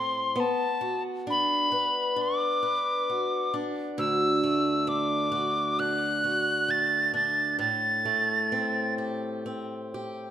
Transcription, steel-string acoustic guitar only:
Already playing: A2 C4 E4 A4
0.36 B3
0.81 F#4
1.27 D4
1.72 B4
2.16 D4
2.63 B4
3.10 F#4
3.54 D4
3.98 D2
4.43 A3
4.87 D4
5.32 F#4
5.79 D4
6.24 F#4
6.68 A3
7.14 D4
7.59 A2
8.05 A3
8.52 C4
8.98 G4
9.46 C4
9.94 G4

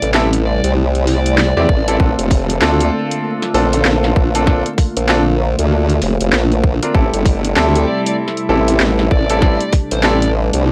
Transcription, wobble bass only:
0.02 A1
0.64 C2
1.57 E2
1.69 A1
2.00 A#1
2.18 F1
2.62 D2
3.54 A#1
3.85 A#1
4.16 A#1
4.97 A#1
5.59 D2
6.02 F1
6.21 F1
6.33 A#1
6.95 A1
7.13 G1
7.57 D2
8.49 A1
8.80 A1
9.11 A1
9.92 A1
10.54 C2

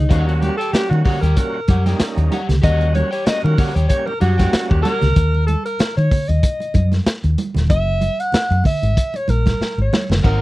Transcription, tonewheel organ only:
0.09 G3 A#3 C#4 F#4
0.73 G3 A#3 C#4 F#4
1.36 G3 A#3 C#4 F#4
1.68 C#4 G4
1.86 G3 A#3 C#4 D#4
2.63 G3 A#3 C#4 F#4
3.26 G3 A#3 C#4 F#4
3.89 G3 A#3 C#4 G4
4.21 C#4 F#4
4.38 G3 A#3 C#4 F#4
10.23 F#3 A#3 C4 D#4

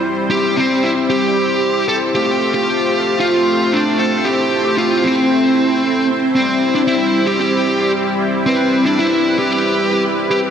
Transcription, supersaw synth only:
Already playing: G3 C4 E4 C5
2.15 A3 F4 C5
4.25 E4
6.36 G3
8.47 B4

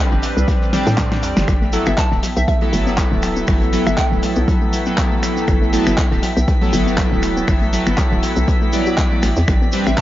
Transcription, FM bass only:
0.12 G1
0.37 C2
0.87 A2
1.23 E2
1.37 G1
1.48 G1
1.87 G1
2.12 D1
2.37 B1
2.73 G1
3.12 D1
3.48 G1
3.87 G1
4.12 D1
4.37 B1
5.48 G1
5.87 G1
6.12 D1
6.37 B1
6.73 G1
7.12 D1
7.48 G1
7.87 G1
8.12 D1
8.37 B1
9.23 A1
9.37 E2
9.48 A1
9.87 A1

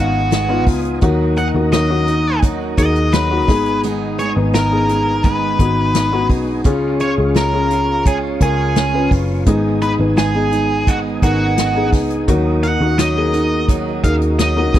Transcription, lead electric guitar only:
Already playing: F#4
1.38 F#5
1.73 D#5
2.78 D#5
3.13 B4
4.19 C#5
4.54 A#4
5.25 B4
7.01 C#5
7.37 A#4
8.07 G#4
8.43 G#4
9.82 B4
10.18 G#4
10.88 F#4
11.23 F#4
12.63 F#5
12.99 D#5
14.04 F5
14.39 D#5

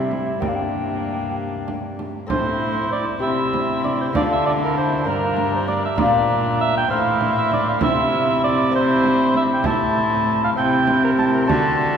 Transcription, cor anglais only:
Already playing: E4
0.13 E4
0.43 D4
2.30 C5
2.92 D5
3.22 E5
3.84 D5
4.01 C5
4.16 D5
4.32 E5
4.46 D5
4.64 A#4
4.78 C5
5.09 A#4
5.56 C5
5.68 D5
5.85 E5
5.99 D5
6.61 E5
6.77 G5
6.90 F5
7.37 E5
7.53 D5
7.69 F5
7.83 E5
8.44 D5
8.75 C5
9.36 E5
9.53 G5
9.66 A5
10.44 F5
10.58 G5
11.04 A#4
11.19 A5
11.34 A#4
11.47 A5

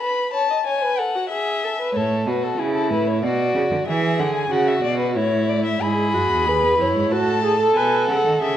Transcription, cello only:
1.94 A2
2.26 B2
2.58 C#3
2.90 A2
3.23 B2
3.55 C#3
3.71 D3
3.88 E3
4.20 D3
4.52 C#3
4.84 B2
5.17 A2
5.82 G#2
6.14 F#2
6.30 E2
6.46 D#2
6.63 E2
6.79 F#2
6.95 G#2
7.12 A2
7.77 B2
8.09 C#3
8.26 D#3
8.42 C#3

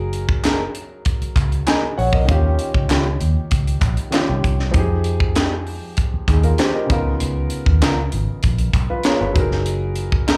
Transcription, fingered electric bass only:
Already playing: F#1
1.22 muted fingered electric bass stroke
1.36 C#2
1.98 A#1
2.29 D#2
2.75 C#2
2.91 C#2
3.21 D#2
3.52 C#2
3.82 A#1
4.29 C2
4.45 C2
4.75 F2
6.14 muted fingered electric bass stroke
6.28 D#2
6.90 C#2
7.21 C#2
7.67 D#2
7.82 C#2
8.13 G#1
8.44 A#1
8.74 B1
9.21 G1
9.36 F#1

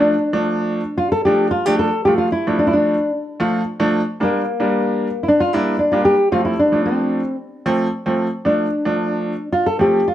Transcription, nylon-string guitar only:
Already playing: D4
0.98 F4
1.12 A4
1.25 G4
1.51 F4
1.66 G4
1.79 A4
2.05 G4
2.18 F4
2.32 E4
2.59 D4
2.67 E4
2.73 D4
4.23 A#3
5.23 E4
5.28 D4
5.40 F4
5.53 E4
5.79 D4
5.92 F4
6.05 G4
6.32 F4
6.45 E4
6.59 D4
6.86 C4
8.46 D4
9.53 F4
9.66 A4
9.81 G4
10.08 F4

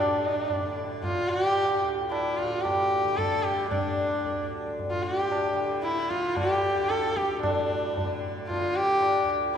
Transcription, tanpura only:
Already playing: D2 A2 D3
0.59 D3
1.21 D3
1.83 D2
2.43 A2
3.04 D3
3.67 D3
4.30 D2
4.93 A2
5.53 D3
6.15 D3
6.76 D2
7.37 A2
7.99 D3
8.60 D3
9.22 D2

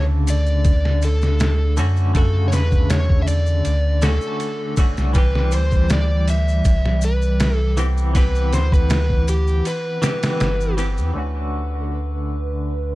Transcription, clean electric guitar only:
Already playing: C#3 D3 A3 F#4
1.77 D3 A3 C#4 F#4
2.13 C#3 D3 A3
2.18 F#4
4.02 D3 A3 C#4 F#4
4.77 D3 A3 C#4 F#4
5.13 E3 G3 C4
5.18 G4
7.77 E3 B3 C4 G4
8.13 E3 B3 C4
8.18 G4
10.02 E3 B3 C4 G4
10.77 E3 B3 C4 G4
11.14 D3 A3 C#4
11.18 F#4

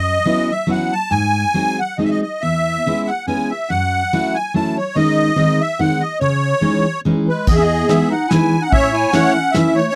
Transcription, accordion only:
Already playing: D#5
0.51 E5
0.71 F#5
0.93 A5
1.11 G#5
1.79 F#5
1.98 D#5
2.04 E5
2.10 D#5
2.22 D#5
2.41 E5
3.07 F#5
3.27 G#5
3.50 E5
3.69 F#5
4.34 G#5
4.55 A5
4.77 C#5
4.96 D#5
5.61 E5
5.80 F#5
6.01 D#5
6.20 C#5
7.29 B4
7.47 G#4 D#5
7.55 E5
7.62 D#5
7.88 E5
8.11 F#5
8.29 G#5
8.62 F#5
8.72 C#5 E5
8.94 G#5
9.12 F#5
9.52 E5
9.75 C#5

